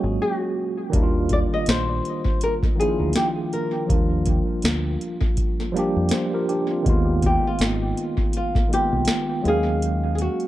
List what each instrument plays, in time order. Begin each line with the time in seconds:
Already playing: tine electric piano F#3 G#3 A#3 C#4 F#4, nylon-string guitar G#4
0.04 fingered electric bass G#1
0.22 nylon-string guitar F#4
0.90 fingered electric bass D#2, tine electric piano D#3 G3 A#3, kick, closed hi-hat
0.95 tine electric piano D4 E4
1.03 tine electric piano F4
1.29 nylon-string guitar D5, kick, closed hi-hat
1.54 nylon-string guitar D#5
1.66 fingered electric bass A#1, nylon-string guitar C5, snare, closed hi-hat
2.05 closed hi-hat
2.25 kick
2.41 nylon-string guitar A#4, closed hi-hat
2.63 kick, snare
2.75 tine electric piano D#3 F3 A#3
2.80 tine electric piano D4 E4, nylon-string guitar G#4, closed hi-hat
2.89 tine electric piano F4
3.00 fingered electric bass D2
3.13 nylon-string guitar G4, snare, closed hi-hat
3.53 nylon-string guitar A#4, closed hi-hat
3.86 fingered electric bass D#2, tine electric piano F3 G3 A#3, kick, closed hi-hat
3.92 tine electric piano D4 F4
4.26 kick, closed hi-hat
4.62 fingered electric bass D2, snare, closed hi-hat
5.01 closed hi-hat
5.21 kick
5.37 kick, closed hi-hat
5.60 snare
5.72 tine electric piano F3 G3 A#3
5.77 tine electric piano D4 G4, closed hi-hat
5.96 fingered electric bass F2
6.09 tine electric piano G4 C5, snare, closed hi-hat
6.34 tine electric piano F4 A#4
6.49 tine electric piano D4 G4, closed hi-hat
6.71 tine electric piano C4 F4
6.83 fingered electric bass D#2, tine electric piano D#3 G#3 A#3, kick, closed hi-hat
6.88 tine electric piano B3 F4
7.22 nylon-string guitar G4, kick, closed hi-hat
7.47 nylon-string guitar F4
7.59 fingered electric bass G#1, snare, closed hi-hat
7.63 nylon-string guitar D#4
7.97 closed hi-hat
8.17 kick
8.33 nylon-string guitar F4, closed hi-hat
8.55 kick, snare
8.68 tine electric piano D#3 G#3 A#3
8.73 tine electric piano B3 F4, nylon-string guitar G4, closed hi-hat
8.93 fingered electric bass B1
9.05 snare, closed hi-hat
9.42 fingered electric bass D#2, tine electric piano F#3 G#3 A#3, closed hi-hat
9.48 tine electric piano C#4 F5, nylon-string guitar G#4
9.82 closed hi-hat
10.15 nylon-string guitar G#4, closed hi-hat
10.22 nylon-string guitar F#4
10.40 closed hi-hat